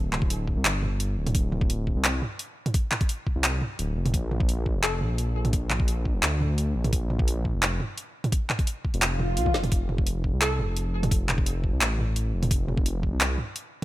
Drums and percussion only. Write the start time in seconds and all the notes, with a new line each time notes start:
0.13 clap, mid tom
0.22 kick
0.30 closed hi-hat
0.48 kick
0.65 clap, closed hi-hat
0.83 mid tom
1.00 closed hi-hat
1.27 closed hi-hat, mid tom
1.35 kick, closed hi-hat
1.52 mid tom
1.61 kick
1.70 closed hi-hat
1.87 kick
2.04 clap, closed hi-hat
2.22 mid tom
2.39 closed hi-hat
2.66 closed hi-hat, mid tom
2.74 kick, closed hi-hat
2.92 clap, mid tom
3.01 kick, closed hi-hat
3.09 closed hi-hat
3.27 kick
3.44 clap, closed hi-hat
3.62 mid tom
3.79 closed hi-hat
4.06 closed hi-hat, mid tom
4.14 kick, closed hi-hat
4.31 mid tom
4.40 kick
4.49 closed hi-hat
4.66 kick
4.83 clap, closed hi-hat
5.01 mid tom
5.18 closed hi-hat
5.45 closed hi-hat, mid tom
5.53 kick, closed hi-hat
5.70 clap, mid tom
5.80 kick
5.88 closed hi-hat
6.05 kick
6.23 clap, closed hi-hat
6.41 mid tom
6.58 closed hi-hat
6.84 closed hi-hat, mid tom
6.93 kick, closed hi-hat
7.10 mid tom
7.19 kick
7.28 closed hi-hat
7.45 kick
7.63 clap, closed hi-hat
7.80 mid tom
7.98 closed hi-hat
8.24 closed hi-hat, mid tom
8.32 kick, closed hi-hat
8.50 clap, mid tom
8.59 kick, closed hi-hat
8.67 closed hi-hat
8.85 kick
8.94 closed hi-hat
9.02 clap, closed hi-hat
9.19 mid tom
9.37 closed hi-hat
9.46 kick, high tom
9.54 snare
9.64 closed hi-hat, mid tom
9.72 kick, closed hi-hat
9.89 mid tom
9.98 kick
10.07 closed hi-hat
10.24 kick
10.42 clap, closed hi-hat
10.59 mid tom
10.77 closed hi-hat
11.03 closed hi-hat, mid tom
11.11 kick, closed hi-hat
11.29 clap, mid tom
11.38 kick
11.46 closed hi-hat
11.64 kick
11.81 clap, closed hi-hat
11.99 mid tom
12.16 closed hi-hat
12.43 closed hi-hat, mid tom
12.51 kick, closed hi-hat
12.68 mid tom
12.77 kick
12.86 closed hi-hat
13.03 kick
13.21 clap, closed hi-hat
13.38 mid tom
13.56 closed hi-hat